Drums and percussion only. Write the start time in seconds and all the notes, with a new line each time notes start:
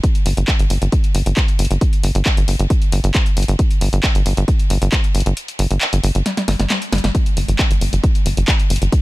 0.04 kick, closed hi-hat
0.15 closed hi-hat
0.26 open hi-hat
0.37 closed hi-hat
0.48 kick, clap, closed hi-hat
0.59 closed hi-hat
0.70 open hi-hat
0.82 closed hi-hat
0.92 kick, closed hi-hat
1.04 closed hi-hat
1.15 open hi-hat
1.26 closed hi-hat
1.37 kick, clap, closed hi-hat
1.48 closed hi-hat
1.59 open hi-hat
1.65 closed hi-hat
1.71 closed hi-hat
1.81 kick, closed hi-hat
1.93 closed hi-hat
2.03 open hi-hat
2.15 closed hi-hat
2.26 kick, clap, closed hi-hat
2.37 closed hi-hat
2.48 open hi-hat
2.59 closed hi-hat
2.70 kick, closed hi-hat
2.82 closed hi-hat
2.92 open hi-hat
3.04 closed hi-hat
3.15 kick, clap, closed hi-hat
3.26 closed hi-hat
3.37 open hi-hat
3.43 closed hi-hat
3.48 closed hi-hat
3.59 kick, closed hi-hat
3.71 closed hi-hat
3.81 open hi-hat
3.93 closed hi-hat
4.04 kick, clap, closed hi-hat
4.15 closed hi-hat
4.26 open hi-hat
4.37 closed hi-hat
4.48 kick, closed hi-hat
4.59 closed hi-hat
4.70 open hi-hat
4.82 closed hi-hat
4.92 kick, clap, closed hi-hat
5.04 closed hi-hat
5.15 open hi-hat
5.20 closed hi-hat
5.26 closed hi-hat
5.37 closed hi-hat
5.48 closed hi-hat
5.59 open hi-hat
5.71 closed hi-hat
5.81 clap, closed hi-hat
5.93 closed hi-hat
6.04 open hi-hat
6.15 closed hi-hat
6.26 snare, closed hi-hat
6.37 snare, closed hi-hat
6.48 snare, open hi-hat
6.60 snare, closed hi-hat
6.70 snare, clap, closed hi-hat
6.82 closed hi-hat
6.92 snare, open hi-hat
6.98 closed hi-hat
7.04 snare, closed hi-hat
7.15 kick, closed hi-hat
7.26 closed hi-hat
7.37 open hi-hat
7.48 closed hi-hat
7.59 kick, clap, closed hi-hat
7.71 closed hi-hat
7.81 open hi-hat
7.93 closed hi-hat
8.04 kick, closed hi-hat
8.15 closed hi-hat
8.26 open hi-hat
8.37 closed hi-hat
8.48 kick, clap, closed hi-hat
8.60 closed hi-hat
8.70 open hi-hat
8.76 closed hi-hat
8.82 closed hi-hat
8.92 kick, closed hi-hat